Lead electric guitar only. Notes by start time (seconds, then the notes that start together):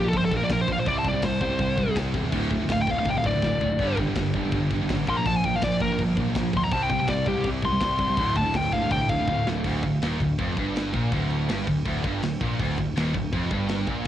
0.08 A4
0.18 C5
0.25 A4
0.37 A#4
0.44 D5
0.52 A#4
0.61 C5
0.72 F5
0.80 C5
0.87 D5
0.99 A5
1.08 D5
1.25 C5
2.72 F5
2.82 G5
2.91 F5
2.99 F5
3.11 G5
3.18 F5
3.26 D5
5.09 C6
5.17 A#5
5.26 A5
5.36 G#5
5.45 G5
5.55 F5
5.63 D5
5.81 A#4
6.57 C6
6.64 A#5
6.73 A5
6.83 G5
6.91 G5
7.00 G5
7.09 D5
7.28 G4
7.65 C6
8.37 A5
8.56 G5
8.73 F5
8.92 G5
9.09 F5